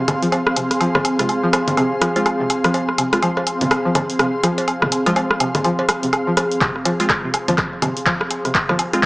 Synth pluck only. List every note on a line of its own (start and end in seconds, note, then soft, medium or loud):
0.22 0.27 F3 loud
0.56 0.61 C3 medium
0.81 0.87 F3 loud
1.19 1.22 C3 medium
1.43 1.48 F3 loud
1.77 1.82 C3 medium
2.02 2.08 F3 loud
2.40 2.43 C3 medium
2.64 2.69 F3 medium
2.98 3.03 C3 medium
3.23 3.29 F3 loud
3.61 3.64 C3 medium
3.85 3.90 F3 loud
4.19 4.23 C3 medium
4.43 4.50 F3 loud
4.82 4.85 C3 medium
5.06 5.11 F3 loud
5.40 5.44 C3 medium
5.64 5.71 F3 loud
6.03 6.06 C3 medium
6.27 6.32 F3 loud
6.61 6.65 C3 medium
6.85 6.92 F3 medium
7.24 7.27 C3 medium
7.48 7.53 F3 loud
7.82 7.86 C3 medium
8.06 8.13 F3 loud
8.45 8.48 C3 medium
8.69 8.74 F3 loud